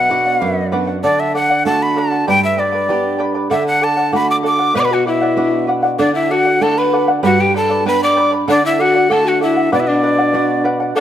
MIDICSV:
0, 0, Header, 1, 5, 480
1, 0, Start_track
1, 0, Tempo, 620476
1, 794, Time_signature, 2, 2, 24, 8
1, 8512, End_track
2, 0, Start_track
2, 0, Title_t, "Quena"
2, 0, Program_c, 0, 77
2, 0, Note_on_c, 0, 78, 88
2, 525, Note_off_c, 0, 78, 0
2, 802, Note_on_c, 0, 74, 85
2, 927, Note_on_c, 0, 76, 81
2, 938, Note_off_c, 0, 74, 0
2, 1041, Note_off_c, 0, 76, 0
2, 1052, Note_on_c, 0, 78, 94
2, 1267, Note_off_c, 0, 78, 0
2, 1285, Note_on_c, 0, 81, 96
2, 1411, Note_on_c, 0, 83, 95
2, 1423, Note_off_c, 0, 81, 0
2, 1536, Note_on_c, 0, 81, 88
2, 1547, Note_off_c, 0, 83, 0
2, 1766, Note_off_c, 0, 81, 0
2, 1772, Note_on_c, 0, 79, 100
2, 1876, Note_off_c, 0, 79, 0
2, 1891, Note_on_c, 0, 76, 91
2, 2005, Note_on_c, 0, 74, 76
2, 2017, Note_off_c, 0, 76, 0
2, 2481, Note_off_c, 0, 74, 0
2, 2719, Note_on_c, 0, 76, 92
2, 2829, Note_off_c, 0, 76, 0
2, 2844, Note_on_c, 0, 78, 98
2, 2969, Note_on_c, 0, 81, 93
2, 2980, Note_off_c, 0, 78, 0
2, 3203, Note_off_c, 0, 81, 0
2, 3212, Note_on_c, 0, 83, 95
2, 3316, Note_off_c, 0, 83, 0
2, 3331, Note_on_c, 0, 86, 93
2, 3378, Note_off_c, 0, 86, 0
2, 3454, Note_on_c, 0, 86, 92
2, 3669, Note_off_c, 0, 86, 0
2, 3690, Note_on_c, 0, 83, 99
2, 3702, Note_on_c, 0, 86, 81
2, 3714, Note_off_c, 0, 83, 0
2, 3751, Note_on_c, 0, 83, 93
2, 3762, Note_off_c, 0, 86, 0
2, 3818, Note_on_c, 0, 78, 86
2, 3830, Note_off_c, 0, 83, 0
2, 3925, Note_off_c, 0, 78, 0
2, 3930, Note_on_c, 0, 76, 75
2, 4373, Note_off_c, 0, 76, 0
2, 4636, Note_on_c, 0, 74, 86
2, 4748, Note_off_c, 0, 74, 0
2, 4756, Note_on_c, 0, 76, 84
2, 4883, Note_on_c, 0, 78, 86
2, 4895, Note_off_c, 0, 76, 0
2, 5124, Note_on_c, 0, 81, 99
2, 5136, Note_off_c, 0, 78, 0
2, 5245, Note_on_c, 0, 83, 85
2, 5257, Note_off_c, 0, 81, 0
2, 5481, Note_off_c, 0, 83, 0
2, 5607, Note_on_c, 0, 78, 100
2, 5730, Note_on_c, 0, 79, 93
2, 5741, Note_off_c, 0, 78, 0
2, 5844, Note_off_c, 0, 79, 0
2, 5855, Note_on_c, 0, 81, 93
2, 6070, Note_off_c, 0, 81, 0
2, 6098, Note_on_c, 0, 83, 104
2, 6200, Note_off_c, 0, 83, 0
2, 6218, Note_on_c, 0, 86, 88
2, 6432, Note_off_c, 0, 86, 0
2, 6576, Note_on_c, 0, 74, 99
2, 6679, Note_off_c, 0, 74, 0
2, 6699, Note_on_c, 0, 76, 98
2, 6813, Note_on_c, 0, 78, 92
2, 6824, Note_off_c, 0, 76, 0
2, 7057, Note_on_c, 0, 81, 92
2, 7069, Note_off_c, 0, 78, 0
2, 7181, Note_on_c, 0, 78, 82
2, 7192, Note_off_c, 0, 81, 0
2, 7287, Note_off_c, 0, 78, 0
2, 7291, Note_on_c, 0, 76, 82
2, 7508, Note_off_c, 0, 76, 0
2, 7534, Note_on_c, 0, 74, 87
2, 7579, Note_on_c, 0, 76, 64
2, 7591, Note_off_c, 0, 74, 0
2, 7638, Note_on_c, 0, 74, 83
2, 7650, Note_off_c, 0, 76, 0
2, 8243, Note_off_c, 0, 74, 0
2, 8482, Note_on_c, 0, 74, 94
2, 8512, Note_off_c, 0, 74, 0
2, 8512, End_track
3, 0, Start_track
3, 0, Title_t, "Charango"
3, 0, Program_c, 1, 24
3, 74, Note_on_c, 1, 71, 50
3, 83, Note_on_c, 1, 74, 60
3, 85, Note_on_c, 1, 78, 58
3, 187, Note_off_c, 1, 78, 0
3, 194, Note_off_c, 1, 71, 0
3, 196, Note_on_c, 1, 78, 50
3, 198, Note_off_c, 1, 74, 0
3, 210, Note_on_c, 1, 74, 47
3, 312, Note_off_c, 1, 74, 0
3, 314, Note_on_c, 1, 71, 52
3, 315, Note_off_c, 1, 78, 0
3, 321, Note_on_c, 1, 74, 54
3, 326, Note_on_c, 1, 78, 55
3, 547, Note_off_c, 1, 71, 0
3, 550, Note_off_c, 1, 74, 0
3, 556, Note_on_c, 1, 71, 67
3, 557, Note_off_c, 1, 78, 0
3, 559, Note_on_c, 1, 74, 74
3, 566, Note_on_c, 1, 78, 71
3, 665, Note_off_c, 1, 78, 0
3, 675, Note_off_c, 1, 71, 0
3, 675, Note_on_c, 1, 78, 55
3, 677, Note_off_c, 1, 74, 0
3, 686, Note_on_c, 1, 74, 45
3, 793, Note_off_c, 1, 74, 0
3, 794, Note_off_c, 1, 78, 0
3, 800, Note_on_c, 1, 69, 74
3, 802, Note_on_c, 1, 74, 76
3, 808, Note_on_c, 1, 78, 83
3, 1028, Note_off_c, 1, 69, 0
3, 1032, Note_off_c, 1, 74, 0
3, 1037, Note_on_c, 1, 69, 53
3, 1039, Note_off_c, 1, 78, 0
3, 1042, Note_on_c, 1, 74, 58
3, 1049, Note_on_c, 1, 78, 59
3, 1150, Note_off_c, 1, 78, 0
3, 1156, Note_off_c, 1, 69, 0
3, 1158, Note_off_c, 1, 74, 0
3, 1159, Note_on_c, 1, 78, 60
3, 1168, Note_on_c, 1, 74, 44
3, 1277, Note_off_c, 1, 78, 0
3, 1279, Note_off_c, 1, 74, 0
3, 1282, Note_on_c, 1, 69, 50
3, 1290, Note_on_c, 1, 74, 53
3, 1293, Note_on_c, 1, 78, 64
3, 1506, Note_off_c, 1, 69, 0
3, 1514, Note_off_c, 1, 74, 0
3, 1515, Note_on_c, 1, 69, 59
3, 1518, Note_off_c, 1, 78, 0
3, 1523, Note_on_c, 1, 74, 60
3, 1527, Note_on_c, 1, 78, 63
3, 1629, Note_off_c, 1, 78, 0
3, 1635, Note_off_c, 1, 69, 0
3, 1635, Note_off_c, 1, 74, 0
3, 1638, Note_on_c, 1, 78, 55
3, 1650, Note_on_c, 1, 74, 41
3, 1755, Note_off_c, 1, 74, 0
3, 1757, Note_off_c, 1, 78, 0
3, 1758, Note_on_c, 1, 67, 62
3, 1761, Note_on_c, 1, 79, 79
3, 1762, Note_on_c, 1, 71, 78
3, 1764, Note_on_c, 1, 74, 84
3, 1765, Note_on_c, 1, 83, 86
3, 1983, Note_off_c, 1, 79, 0
3, 1989, Note_off_c, 1, 71, 0
3, 1989, Note_off_c, 1, 74, 0
3, 1992, Note_on_c, 1, 79, 54
3, 1997, Note_off_c, 1, 67, 0
3, 1997, Note_off_c, 1, 83, 0
3, 1998, Note_on_c, 1, 71, 60
3, 1999, Note_on_c, 1, 74, 65
3, 2006, Note_on_c, 1, 83, 65
3, 2099, Note_off_c, 1, 83, 0
3, 2107, Note_off_c, 1, 74, 0
3, 2108, Note_on_c, 1, 83, 54
3, 2114, Note_off_c, 1, 71, 0
3, 2114, Note_off_c, 1, 79, 0
3, 2116, Note_on_c, 1, 74, 51
3, 2123, Note_on_c, 1, 71, 46
3, 2229, Note_off_c, 1, 71, 0
3, 2231, Note_off_c, 1, 74, 0
3, 2232, Note_off_c, 1, 83, 0
3, 2233, Note_on_c, 1, 79, 57
3, 2239, Note_on_c, 1, 71, 56
3, 2240, Note_on_c, 1, 74, 57
3, 2243, Note_on_c, 1, 83, 63
3, 2455, Note_off_c, 1, 79, 0
3, 2462, Note_off_c, 1, 71, 0
3, 2464, Note_off_c, 1, 74, 0
3, 2464, Note_on_c, 1, 79, 59
3, 2468, Note_off_c, 1, 83, 0
3, 2471, Note_on_c, 1, 71, 61
3, 2474, Note_on_c, 1, 74, 64
3, 2477, Note_on_c, 1, 83, 64
3, 2578, Note_off_c, 1, 83, 0
3, 2582, Note_off_c, 1, 74, 0
3, 2587, Note_on_c, 1, 83, 44
3, 2589, Note_off_c, 1, 71, 0
3, 2590, Note_off_c, 1, 79, 0
3, 2592, Note_on_c, 1, 74, 47
3, 2598, Note_on_c, 1, 71, 44
3, 2702, Note_off_c, 1, 74, 0
3, 2706, Note_on_c, 1, 69, 81
3, 2711, Note_on_c, 1, 74, 76
3, 2712, Note_off_c, 1, 83, 0
3, 2716, Note_on_c, 1, 78, 77
3, 2717, Note_off_c, 1, 71, 0
3, 2941, Note_off_c, 1, 69, 0
3, 2947, Note_off_c, 1, 74, 0
3, 2949, Note_off_c, 1, 78, 0
3, 2950, Note_on_c, 1, 69, 58
3, 2956, Note_on_c, 1, 74, 63
3, 2958, Note_on_c, 1, 78, 55
3, 3059, Note_off_c, 1, 78, 0
3, 3068, Note_on_c, 1, 78, 53
3, 3069, Note_off_c, 1, 74, 0
3, 3073, Note_off_c, 1, 69, 0
3, 3078, Note_on_c, 1, 74, 43
3, 3183, Note_off_c, 1, 74, 0
3, 3188, Note_off_c, 1, 78, 0
3, 3188, Note_on_c, 1, 69, 52
3, 3192, Note_on_c, 1, 74, 59
3, 3197, Note_on_c, 1, 78, 65
3, 3418, Note_off_c, 1, 69, 0
3, 3423, Note_off_c, 1, 74, 0
3, 3427, Note_on_c, 1, 69, 59
3, 3431, Note_off_c, 1, 78, 0
3, 3432, Note_on_c, 1, 74, 65
3, 3440, Note_on_c, 1, 78, 61
3, 3539, Note_off_c, 1, 78, 0
3, 3547, Note_off_c, 1, 74, 0
3, 3548, Note_on_c, 1, 78, 56
3, 3552, Note_off_c, 1, 69, 0
3, 3557, Note_on_c, 1, 74, 40
3, 3664, Note_off_c, 1, 74, 0
3, 3667, Note_off_c, 1, 78, 0
3, 3668, Note_on_c, 1, 71, 82
3, 3673, Note_on_c, 1, 74, 79
3, 3677, Note_on_c, 1, 78, 88
3, 3902, Note_off_c, 1, 71, 0
3, 3909, Note_off_c, 1, 74, 0
3, 3912, Note_on_c, 1, 71, 50
3, 3914, Note_off_c, 1, 78, 0
3, 3918, Note_on_c, 1, 74, 53
3, 3923, Note_on_c, 1, 78, 59
3, 4024, Note_off_c, 1, 78, 0
3, 4033, Note_on_c, 1, 78, 54
3, 4034, Note_off_c, 1, 71, 0
3, 4034, Note_off_c, 1, 74, 0
3, 4044, Note_on_c, 1, 74, 48
3, 4149, Note_off_c, 1, 74, 0
3, 4153, Note_off_c, 1, 78, 0
3, 4154, Note_on_c, 1, 71, 52
3, 4159, Note_on_c, 1, 74, 52
3, 4163, Note_on_c, 1, 78, 64
3, 4378, Note_off_c, 1, 71, 0
3, 4386, Note_off_c, 1, 74, 0
3, 4387, Note_on_c, 1, 71, 59
3, 4392, Note_off_c, 1, 78, 0
3, 4395, Note_on_c, 1, 74, 60
3, 4401, Note_on_c, 1, 78, 69
3, 4498, Note_off_c, 1, 78, 0
3, 4508, Note_on_c, 1, 78, 54
3, 4509, Note_off_c, 1, 74, 0
3, 4512, Note_off_c, 1, 71, 0
3, 4518, Note_on_c, 1, 74, 42
3, 4623, Note_off_c, 1, 74, 0
3, 4629, Note_off_c, 1, 78, 0
3, 4629, Note_on_c, 1, 69, 73
3, 4632, Note_on_c, 1, 74, 77
3, 4638, Note_on_c, 1, 78, 82
3, 4864, Note_off_c, 1, 69, 0
3, 4869, Note_off_c, 1, 74, 0
3, 4873, Note_on_c, 1, 69, 60
3, 4875, Note_off_c, 1, 78, 0
3, 4878, Note_on_c, 1, 74, 56
3, 4884, Note_on_c, 1, 78, 57
3, 4979, Note_off_c, 1, 78, 0
3, 4989, Note_on_c, 1, 78, 55
3, 4991, Note_off_c, 1, 74, 0
3, 4995, Note_off_c, 1, 69, 0
3, 5001, Note_on_c, 1, 74, 43
3, 5106, Note_off_c, 1, 74, 0
3, 5110, Note_on_c, 1, 69, 60
3, 5111, Note_off_c, 1, 78, 0
3, 5115, Note_on_c, 1, 74, 56
3, 5120, Note_on_c, 1, 78, 59
3, 5345, Note_off_c, 1, 69, 0
3, 5351, Note_off_c, 1, 74, 0
3, 5355, Note_on_c, 1, 69, 59
3, 5356, Note_off_c, 1, 78, 0
3, 5360, Note_on_c, 1, 74, 62
3, 5366, Note_on_c, 1, 78, 66
3, 5467, Note_off_c, 1, 78, 0
3, 5476, Note_off_c, 1, 69, 0
3, 5476, Note_on_c, 1, 78, 57
3, 5479, Note_off_c, 1, 74, 0
3, 5488, Note_on_c, 1, 74, 39
3, 5588, Note_off_c, 1, 74, 0
3, 5591, Note_on_c, 1, 67, 74
3, 5594, Note_off_c, 1, 78, 0
3, 5594, Note_on_c, 1, 71, 87
3, 5594, Note_on_c, 1, 79, 73
3, 5598, Note_on_c, 1, 74, 76
3, 5598, Note_on_c, 1, 83, 82
3, 5824, Note_off_c, 1, 79, 0
3, 5828, Note_off_c, 1, 71, 0
3, 5833, Note_on_c, 1, 79, 63
3, 5834, Note_off_c, 1, 67, 0
3, 5834, Note_off_c, 1, 74, 0
3, 5838, Note_off_c, 1, 83, 0
3, 5838, Note_on_c, 1, 71, 63
3, 5844, Note_on_c, 1, 74, 58
3, 5845, Note_on_c, 1, 83, 55
3, 5943, Note_off_c, 1, 83, 0
3, 5949, Note_off_c, 1, 74, 0
3, 5952, Note_on_c, 1, 83, 52
3, 5953, Note_off_c, 1, 71, 0
3, 5955, Note_off_c, 1, 79, 0
3, 5958, Note_on_c, 1, 74, 50
3, 5962, Note_on_c, 1, 71, 46
3, 6073, Note_off_c, 1, 71, 0
3, 6073, Note_off_c, 1, 74, 0
3, 6075, Note_off_c, 1, 83, 0
3, 6077, Note_on_c, 1, 79, 61
3, 6082, Note_on_c, 1, 71, 55
3, 6083, Note_on_c, 1, 74, 63
3, 6087, Note_on_c, 1, 83, 58
3, 6306, Note_off_c, 1, 79, 0
3, 6309, Note_off_c, 1, 71, 0
3, 6311, Note_off_c, 1, 74, 0
3, 6315, Note_on_c, 1, 79, 55
3, 6316, Note_off_c, 1, 83, 0
3, 6318, Note_on_c, 1, 71, 57
3, 6321, Note_on_c, 1, 74, 63
3, 6325, Note_on_c, 1, 83, 74
3, 6426, Note_off_c, 1, 83, 0
3, 6432, Note_off_c, 1, 74, 0
3, 6435, Note_on_c, 1, 83, 54
3, 6436, Note_off_c, 1, 79, 0
3, 6438, Note_off_c, 1, 71, 0
3, 6441, Note_on_c, 1, 74, 47
3, 6447, Note_on_c, 1, 71, 42
3, 6550, Note_off_c, 1, 74, 0
3, 6556, Note_off_c, 1, 83, 0
3, 6556, Note_on_c, 1, 69, 75
3, 6559, Note_on_c, 1, 74, 81
3, 6562, Note_off_c, 1, 71, 0
3, 6563, Note_on_c, 1, 78, 86
3, 6788, Note_off_c, 1, 69, 0
3, 6794, Note_off_c, 1, 74, 0
3, 6797, Note_on_c, 1, 69, 56
3, 6800, Note_off_c, 1, 78, 0
3, 6803, Note_on_c, 1, 74, 65
3, 6810, Note_on_c, 1, 78, 59
3, 6908, Note_off_c, 1, 78, 0
3, 6917, Note_off_c, 1, 69, 0
3, 6918, Note_on_c, 1, 78, 55
3, 6920, Note_off_c, 1, 74, 0
3, 6930, Note_on_c, 1, 74, 42
3, 7032, Note_off_c, 1, 74, 0
3, 7035, Note_off_c, 1, 78, 0
3, 7036, Note_on_c, 1, 69, 60
3, 7041, Note_on_c, 1, 74, 56
3, 7044, Note_on_c, 1, 78, 63
3, 7263, Note_off_c, 1, 69, 0
3, 7270, Note_off_c, 1, 74, 0
3, 7272, Note_on_c, 1, 69, 63
3, 7275, Note_off_c, 1, 78, 0
3, 7279, Note_on_c, 1, 74, 60
3, 7284, Note_on_c, 1, 78, 61
3, 7393, Note_off_c, 1, 78, 0
3, 7394, Note_off_c, 1, 69, 0
3, 7398, Note_off_c, 1, 74, 0
3, 7402, Note_on_c, 1, 78, 47
3, 7409, Note_on_c, 1, 74, 38
3, 7513, Note_off_c, 1, 74, 0
3, 7515, Note_off_c, 1, 78, 0
3, 7519, Note_on_c, 1, 71, 75
3, 7522, Note_on_c, 1, 74, 77
3, 7524, Note_on_c, 1, 78, 85
3, 7748, Note_off_c, 1, 71, 0
3, 7753, Note_off_c, 1, 74, 0
3, 7756, Note_off_c, 1, 78, 0
3, 7758, Note_on_c, 1, 71, 49
3, 7763, Note_on_c, 1, 74, 53
3, 7766, Note_on_c, 1, 78, 68
3, 7869, Note_off_c, 1, 78, 0
3, 7877, Note_off_c, 1, 71, 0
3, 7878, Note_on_c, 1, 78, 58
3, 7880, Note_off_c, 1, 74, 0
3, 7891, Note_on_c, 1, 74, 47
3, 7990, Note_off_c, 1, 74, 0
3, 7994, Note_on_c, 1, 71, 53
3, 7995, Note_off_c, 1, 78, 0
3, 8001, Note_on_c, 1, 74, 55
3, 8005, Note_on_c, 1, 78, 60
3, 8222, Note_off_c, 1, 71, 0
3, 8229, Note_off_c, 1, 74, 0
3, 8232, Note_on_c, 1, 71, 62
3, 8233, Note_off_c, 1, 78, 0
3, 8238, Note_on_c, 1, 74, 76
3, 8242, Note_on_c, 1, 78, 67
3, 8346, Note_off_c, 1, 78, 0
3, 8354, Note_off_c, 1, 71, 0
3, 8355, Note_on_c, 1, 78, 53
3, 8357, Note_off_c, 1, 74, 0
3, 8368, Note_on_c, 1, 74, 45
3, 8470, Note_off_c, 1, 74, 0
3, 8472, Note_off_c, 1, 78, 0
3, 8473, Note_on_c, 1, 69, 75
3, 8482, Note_on_c, 1, 74, 85
3, 8482, Note_on_c, 1, 78, 81
3, 8512, Note_off_c, 1, 69, 0
3, 8512, Note_off_c, 1, 74, 0
3, 8512, Note_off_c, 1, 78, 0
3, 8512, End_track
4, 0, Start_track
4, 0, Title_t, "Pan flute"
4, 0, Program_c, 2, 75
4, 0, Note_on_c, 2, 78, 72
4, 527, Note_off_c, 2, 78, 0
4, 3686, Note_on_c, 2, 71, 92
4, 3701, Note_on_c, 2, 74, 70
4, 3713, Note_off_c, 2, 71, 0
4, 3742, Note_on_c, 2, 71, 78
4, 3754, Note_off_c, 2, 74, 0
4, 3809, Note_on_c, 2, 66, 69
4, 3820, Note_off_c, 2, 71, 0
4, 3917, Note_off_c, 2, 66, 0
4, 3922, Note_on_c, 2, 64, 70
4, 4369, Note_off_c, 2, 64, 0
4, 4633, Note_on_c, 2, 62, 69
4, 4747, Note_off_c, 2, 62, 0
4, 4753, Note_on_c, 2, 64, 67
4, 4878, Note_on_c, 2, 66, 77
4, 4889, Note_off_c, 2, 64, 0
4, 5120, Note_on_c, 2, 69, 75
4, 5132, Note_off_c, 2, 66, 0
4, 5247, Note_on_c, 2, 71, 74
4, 5258, Note_off_c, 2, 69, 0
4, 5482, Note_off_c, 2, 71, 0
4, 5614, Note_on_c, 2, 66, 82
4, 5723, Note_on_c, 2, 67, 71
4, 5734, Note_off_c, 2, 66, 0
4, 5840, Note_off_c, 2, 67, 0
4, 5848, Note_on_c, 2, 69, 85
4, 6066, Note_off_c, 2, 69, 0
4, 6085, Note_on_c, 2, 71, 86
4, 6193, Note_off_c, 2, 71, 0
4, 6208, Note_on_c, 2, 74, 83
4, 6426, Note_off_c, 2, 74, 0
4, 6568, Note_on_c, 2, 62, 83
4, 6675, Note_off_c, 2, 62, 0
4, 6688, Note_on_c, 2, 64, 67
4, 6806, Note_on_c, 2, 66, 81
4, 6817, Note_off_c, 2, 64, 0
4, 7044, Note_on_c, 2, 69, 86
4, 7055, Note_off_c, 2, 66, 0
4, 7164, Note_on_c, 2, 66, 71
4, 7175, Note_off_c, 2, 69, 0
4, 7280, Note_off_c, 2, 66, 0
4, 7293, Note_on_c, 2, 64, 73
4, 7509, Note_off_c, 2, 64, 0
4, 7525, Note_on_c, 2, 62, 67
4, 7576, Note_on_c, 2, 64, 58
4, 7587, Note_off_c, 2, 62, 0
4, 7640, Note_on_c, 2, 62, 68
4, 7651, Note_off_c, 2, 64, 0
4, 8244, Note_off_c, 2, 62, 0
4, 8484, Note_on_c, 2, 62, 76
4, 8512, Note_off_c, 2, 62, 0
4, 8512, End_track
5, 0, Start_track
5, 0, Title_t, "Nylon-string guitar"
5, 0, Program_c, 3, 24
5, 0, Note_on_c, 3, 47, 75
5, 79, Note_on_c, 3, 59, 53
5, 82, Note_on_c, 3, 62, 47
5, 84, Note_on_c, 3, 66, 61
5, 303, Note_off_c, 3, 47, 0
5, 322, Note_on_c, 3, 42, 73
5, 461, Note_off_c, 3, 59, 0
5, 462, Note_off_c, 3, 62, 0
5, 464, Note_off_c, 3, 66, 0
5, 559, Note_on_c, 3, 59, 44
5, 561, Note_on_c, 3, 62, 39
5, 566, Note_on_c, 3, 66, 49
5, 749, Note_off_c, 3, 59, 0
5, 751, Note_off_c, 3, 62, 0
5, 752, Note_off_c, 3, 66, 0
5, 784, Note_off_c, 3, 42, 0
5, 803, Note_on_c, 3, 50, 68
5, 1279, Note_on_c, 3, 57, 54
5, 1284, Note_on_c, 3, 62, 47
5, 1287, Note_on_c, 3, 66, 55
5, 1731, Note_off_c, 3, 50, 0
5, 1743, Note_off_c, 3, 57, 0
5, 1745, Note_off_c, 3, 62, 0
5, 1747, Note_off_c, 3, 66, 0
5, 1764, Note_on_c, 3, 43, 66
5, 2236, Note_on_c, 3, 59, 49
5, 2241, Note_on_c, 3, 62, 47
5, 2245, Note_on_c, 3, 67, 55
5, 2692, Note_off_c, 3, 43, 0
5, 2702, Note_off_c, 3, 59, 0
5, 2704, Note_off_c, 3, 62, 0
5, 2707, Note_off_c, 3, 67, 0
5, 2715, Note_on_c, 3, 50, 71
5, 3190, Note_on_c, 3, 57, 53
5, 3192, Note_on_c, 3, 62, 50
5, 3197, Note_on_c, 3, 66, 55
5, 3648, Note_off_c, 3, 50, 0
5, 3660, Note_off_c, 3, 57, 0
5, 3660, Note_off_c, 3, 62, 0
5, 3661, Note_off_c, 3, 66, 0
5, 3678, Note_on_c, 3, 47, 76
5, 4152, Note_on_c, 3, 59, 49
5, 4155, Note_on_c, 3, 62, 45
5, 4157, Note_on_c, 3, 66, 58
5, 4609, Note_off_c, 3, 47, 0
5, 4620, Note_off_c, 3, 59, 0
5, 4621, Note_off_c, 3, 62, 0
5, 4623, Note_off_c, 3, 66, 0
5, 4636, Note_on_c, 3, 50, 71
5, 5110, Note_on_c, 3, 57, 51
5, 5114, Note_on_c, 3, 62, 44
5, 5117, Note_on_c, 3, 66, 48
5, 5568, Note_off_c, 3, 50, 0
5, 5579, Note_off_c, 3, 57, 0
5, 5581, Note_off_c, 3, 62, 0
5, 5582, Note_off_c, 3, 66, 0
5, 5592, Note_on_c, 3, 43, 70
5, 6076, Note_on_c, 3, 59, 50
5, 6079, Note_on_c, 3, 62, 45
5, 6083, Note_on_c, 3, 67, 50
5, 6526, Note_off_c, 3, 43, 0
5, 6542, Note_off_c, 3, 59, 0
5, 6544, Note_off_c, 3, 62, 0
5, 6546, Note_off_c, 3, 67, 0
5, 6560, Note_on_c, 3, 50, 72
5, 7040, Note_on_c, 3, 57, 50
5, 7043, Note_on_c, 3, 62, 45
5, 7045, Note_on_c, 3, 66, 57
5, 7489, Note_off_c, 3, 50, 0
5, 7504, Note_off_c, 3, 57, 0
5, 7505, Note_off_c, 3, 62, 0
5, 7507, Note_off_c, 3, 66, 0
5, 7525, Note_on_c, 3, 47, 72
5, 7995, Note_on_c, 3, 59, 53
5, 8000, Note_on_c, 3, 62, 40
5, 8004, Note_on_c, 3, 66, 51
5, 8452, Note_off_c, 3, 47, 0
5, 8461, Note_off_c, 3, 59, 0
5, 8464, Note_off_c, 3, 62, 0
5, 8464, Note_off_c, 3, 66, 0
5, 8512, End_track
0, 0, End_of_file